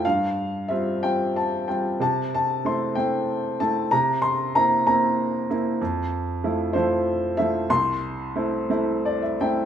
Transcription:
\new Staff \with { instrumentName = "Upright piano" } { \time 6/8 \key c \major \tempo 4. = 63 << { f''4 e''8 g''8 a''8 g''8 | a''8 a''8 c'''8 g''4 a''8 | bes''8 c'''8 bes''8 bes''4 r8 | r4. c''4 e''8 |
c'''2 d''16 e''16 g''8 | } \\ { g,4 <g c' f'>8 <g c' f'>4 <g c' f'>8 | c4 <a c' e'>8 <a c' e'>4 <a c' e'>8 | c4 <bes c' e'>8 <bes c' e'>4 <bes c' e'>8 | f,4 <f a e'>8 <f a e'>4 <f a e'>8 |
c,4 <a c' e'>8 <a c' e'>4 <a c' e'>8 | } >> }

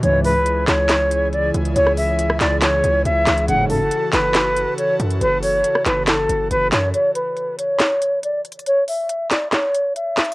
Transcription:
<<
  \new Staff \with { instrumentName = "Flute" } { \time 4/4 \key fis \minor \tempo 4 = 139 cis''8 b'4 cis''4. d''8 r8 | cis''8 e''4 d''8 cis''4 e''4 | fis''8 a'4 b'4. cis''8 r8 | b'8 cis''4 b'8 a'4 b'8 cis''8 |
cis''8 b'4 cis''4. d''8 r8 | cis''8 e''4 d''8 cis''4 e''4 | }
  \new Staff \with { instrumentName = "Analog synth pad" } { \time 4/4 \key fis \minor << { <e' gis'>1~ | <e' gis'>1 | <fis' a'>1~ | <fis' a'>1 |
r1 | r1 | } \\ { <cis e>1~ | <cis e>1~ | <cis e>1~ | <cis e>1 |
r1 | r1 | } >> }
  \new Staff \with { instrumentName = "Analog polysynth" } { \clef bass \time 4/4 \key fis \minor <cis, gis, e>8. r2. r16 | r1 | <a,, gis, cis>8. r2. r16 | r1 |
r1 | r1 | }
  \new Staff \with { instrumentName = "808-style bass" } { \clef bass \time 4/4 \key fis \minor cis,4. cis,2 cis,8 | cis,4. cis,4 cis,8 cis,8 cis,8 | fis,,4 r8 fis,,4~ fis,,16 r8. fis,8 | fis,,4 r8 fis,,4 fis,,8 fis,,8 fis,8 |
r1 | r1 | }
  \new DrumStaff \with { instrumentName = "Drums" } \drummode { \time 4/4 hh8 hho8 hh8 <hc hh sn>8 <hc hh sn>8 hh8 hh8 hh16 hh16 | hh16 ss16 hho8 hh16 ss16 <hc hh sn>8 <hc hh sn>8 hh8 hh8 <hc hh sn>16 hh16 | hh8 hho8 hh8 <hc hh sn>8 <hc hh sn>8 hh8 hh8 hh16 hh16 | hh8 hho8 hh16 ss16 <hc hh sn>8 <hc hh sn>8 hh8 hh8 <hc hh sn>8 |
hh8 hh8 hh8 hh8 <hc hh sn>8 hh8 \tuplet 3/2 { hh16 r16 r16 hh16 hh16 hh16 } | hh8 hho8 hh8 <hc hh sn>8 <hc hh sn>8 hh8 \tuplet 3/2 { hh16 r16 r16 <hc hh sn>16 hh16 r16 } | }
>>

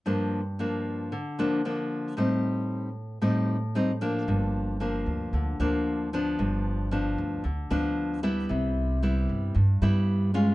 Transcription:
<<
  \new Staff \with { instrumentName = "Nylon-string guitar" } { \time 4/4 \key g \minor \tempo 4 = 114 << { <f bes d'>8 r8 <f bes d'>4 r8 <f bes d'>8 <f bes d'>4 | <g c' ees'>4. r8 <g c' ees'>8 r8 <g c' ees'>8 <f bes d'>8~ | <f bes d'>4 <f bes d'>4. <f bes d'>4 <f b d'>8~ | <f b d'>4 <f b d'>4 r8 <f b d'>4 <g b e'>8~ |
<g b e'>4 <g b e'>4 r8 <g b e'>4 <aes cis' f'>8 | } \\ { g,2 d2 | a,2 a,2 | g,2 d2 | g,2 d2 |
c2 g,2 | } >> }
  \new Staff \with { instrumentName = "Upright bass" } { \clef bass \time 4/4 \key g \minor r1 | r1 | g,,4. d,8 d,8 d,4. | g,,4. d,8 d,8 d,4. |
c,4. g,8 g,8 g,4. | }
>>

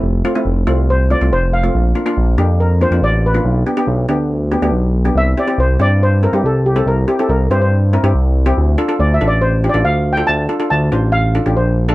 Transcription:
<<
  \new Staff \with { instrumentName = "Steel pan" } { \time 4/4 \key c \mixolydian \tempo 4 = 140 a'4~ a'16 r8. c''8 d''8 c''8 f''8~ | f''8 r4. bes'8 c''8 d''8 b'8~ | b'8 r2. r8 | e''8 d''8 c''8 d''8 c''8 bes'16 g'16 a'8 g'16 a'16 |
bes'8 g'16 a'16 bes'8 c''16 c''8 r4. r16 | r4 \tuplet 3/2 { d''8 e''8 d''8 c''4 d''8 f''4 g''8 } | a''8 r8 a''4 f''4 c''8 r8 | }
  \new Staff \with { instrumentName = "Steel pan" } { \time 4/4 \key c \mixolydian r8 <a c' f'>16 <a c' e'>8 r16 <a c' f'>8 r8 <a c' f'>16 <a c' f'>8 r8 <a c' f'>16 | r8 <bes d' f'>16 <bes d' f'>8 r16 <bes d' g'>8 r8 <bes d' f'>16 <bes d' f'>8 r8 <bes d' f'>16 | r8 <b d' g'>16 <b d' g'>8 r16 <b d' g'>8 r8 <b d' g'>16 <b d' g'>8 r8 <b d' g'>16 | r8 <c' e' g'>16 <c' e' g'>8 r16 <c' e' g'>8 r8 <c' e' a'>16 <c' e' g'>8 r8 <c' e' a'>16~ |
<c' e' a'>16 r16 <c' e' g'>16 <c' e' g'>8 r16 <c' e' g'>8 r8 <c' e' bes'>16 <c' e' g'>8 r8 <c' e' g'>16 | r8 <d' f' a'>16 <d' f' a'>8 r16 <d' f' a'>8 r8 <d' f' g'>16 <d' f' a'>8 r8 <d' f' a'>16~ | <d' f' a'>16 r16 <d' f' a'>16 <d' f' a'>8 r16 <d' f' c''>8 r8 <d' f' a'>16 <d' f' g'>8 r8 <d' f' a'>16 | }
  \new Staff \with { instrumentName = "Analog synth bass" } { \clef bass \time 4/4 \key c \mixolydian f,,8 r8 f,,8 c,4~ c,16 c,16 f,,4 | bes,,8 r8 bes,,8 f,4~ f,16 f,16 a,,4 | b,,8 r8 b,,8 d,4~ d,16 d,16 b,,4 | c,8 r8 c,8 g,4~ g,16 g,16 c,4 |
c,8 r8 c,8 g,4~ g,16 g,16 c,4 | d,8 r8 d,8 a,,4~ a,,16 a,,16 d,4 | d,8 r8 d,8 a,,4~ a,,16 a,,16 bes,,4 | }
>>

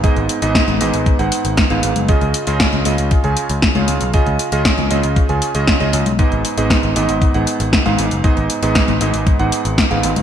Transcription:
<<
  \new Staff \with { instrumentName = "Electric grand piano" } { \time 4/4 \key gis \dorian \tempo 4 = 117 <gis, b dis' gis' dis''>8. <gis, b dis' gis' dis''>8. <gis, b dis' gis' dis''>8. <gis, b dis' gis' fis''>4 <gis, b dis' gis' eis''>8. | <cis cis' eis' gis' dis''>8. <cis cis' eis' gis' dis''>8. <cis cis' eis' gis' dis''>8. <cis cis' eis' gis' gis''>4 <cis cis' eis' gis' eis''>8. | <cis cis' eis' gis' dis''>8. <cis cis' eis' gis' dis''>8. <cis cis' eis' gis' dis''>8. <cis cis' eis' gis' gis''>8 <cis cis' eis' gis' dis''>8 <cis cis' eis' gis' dis''>8 r16 | <gis, b dis' gis' dis''>8. <gis, b dis' gis' dis''>8. <gis, b dis' gis' dis''>8. <gis, b dis' gis' fis''>4 <gis, b dis' gis' eis''>8. |
<gis, b dis' gis' dis''>8. <gis, b dis' gis' dis''>8. <gis, b dis' gis' dis''>8. <gis, b dis' gis' fis''>4 <gis, b dis' gis' eis''>8. | }
  \new Staff \with { instrumentName = "Picked electric bass" } { \clef bass \time 4/4 \key gis \dorian r16 gis,,16 r16 gis,,16 r16 gis,,16 gis,,16 gis,,16 r16 gis,,16 r16 gis,,16 r16 gis,,16 gis,,16 fis,,16 | r16 cis,16 r16 cis,16 r16 cis,16 cis,16 cis,16 r16 cis,16 r16 cis,16 r16 cis,16 cis,16 b,,16 | r16 cis,16 r16 cis,16 r16 cis,16 cis,16 cis,16 r16 cis,16 r16 cis,16 r16 cis,16 cis,16 b,,16 | r16 gis,,16 r16 gis,,16 r16 gis,,16 gis,,16 gis,,16 r16 gis,,16 r16 gis,,16 r16 gis,,16 gis,,16 fis,,16 |
r16 gis,,16 r16 gis,,16 r16 gis,,16 gis,,16 gis,,16 r16 gis,,16 r16 gis,,16 r16 gis,,16 gis,,16 fis,,16 | }
  \new DrumStaff \with { instrumentName = "Drums" } \drummode { \time 4/4 <hh bd>16 hh16 hh16 hh16 <hh bd sn>16 <cgho hh>16 hh16 hh16 <hh bd>16 hh16 hh16 hh16 <hh bd sn>16 hh16 hh16 <cgho hh>16 | <hh bd>16 hh16 hh16 hh16 <hh bd sn>16 hh16 hh16 hh16 <hh bd>16 hh16 hh16 hh16 <hh bd sn>16 <cgho hh>16 hh16 hh16 | <hh bd>16 hh16 hh16 hh16 <hh bd sn>16 <cgho hh>16 hh16 hh16 <hh bd>16 hh16 hh16 hh16 <hh bd sn>16 hh16 hh16 <cgho hh>16 | <hh bd>16 hh16 hh16 hh16 <hh bd sn>16 hh16 hh16 hh16 <hh bd>16 hh16 hh16 hh16 <hh bd sn>16 <cgho hh>16 hh16 hh16 |
<hh bd>16 hh16 hh16 hh16 <hh bd sn>16 <cgho hh>16 hh16 hh16 <hh bd>16 hh16 hh16 hh16 <hh bd sn>16 hh16 hh16 <cgho hh>16 | }
>>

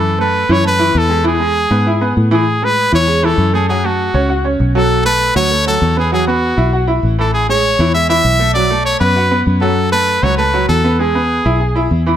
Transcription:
<<
  \new Staff \with { instrumentName = "Trumpet" } { \time 4/4 \key a \major \tempo 4 = 197 a'8 b'4 cis''8 b'4 a'4 | gis'2. r8 gis'8~ | gis'8 b'4 cis''4 a'4 gis'8 | gis'8 fis'2 r4 a'8~ |
a'8 b'4 cis''4 a'4 gis'8 | gis'8 fis'2 r4 a'8 | gis'8 cis''4. e''8 e''4. | d''4 cis''8 b'4. r8 a'8~ |
a'8 b'4 cis''8 b'4 a'4 | gis'2. r4 | }
  \new Staff \with { instrumentName = "Upright piano" } { \time 4/4 \key a \major <e e'>8 <a a'>4 <e e'>8 <a a'>8 <e e'>4 <gis gis'>8 | <e e'>8 <gis gis'>4 <b b'>8 <e' e''>8 <b b'>4 <e e'>8 | r8 <gis gis'>4 <e e'>8 <gis gis'>8 <e e'>4 <a a'>8 | <fis fis'>8 <a a'>4 <cis' cis''>8 <fis' fis''>8 <cis' cis''>4 <fis fis'>8~ |
<fis fis'>8 <a a'>4 <fis fis'>8 <a a'>8 <fis fis'>4 <b b'>8 | <fis fis'>8 <b b'>4 <e' e''>8 <fis' fis''>8 <e' e''>4 <e e'>8~ | <e e'>8 <gis gis'>4 <e e'>8 <gis gis'>8 <e e'>4 <a a'>8 | <fis fis'>8 <a a'>4 <b b'>8 <fis' fis''>8 <b b'>4 <fis fis'>8~ |
<fis fis'>8 <a a'>4 <fis fis'>8 <a a'>8 <fis fis'>4 <b b'>8 | <gis gis'>8 <b b'>4 <e' e''>8 <gis' gis''>8 <e' e''>4 <e e'>8 | }
  \new Staff \with { instrumentName = "Fingered electric bass" } { \clef bass \time 4/4 \key a \major fis,4. fis,4. e,4~ | e,4. gis,4. a,4~ | a,4. e,4. fis,4~ | fis,4. cis,4. b,,4~ |
b,,4. d,4. e,4~ | e,4. b,,4. a,,4~ | a,,4. e,4. b,,4~ | b,,4. fis,4. fis,4~ |
fis,4. cis,4. e,4~ | e,4. b,,4. e,4 | }
>>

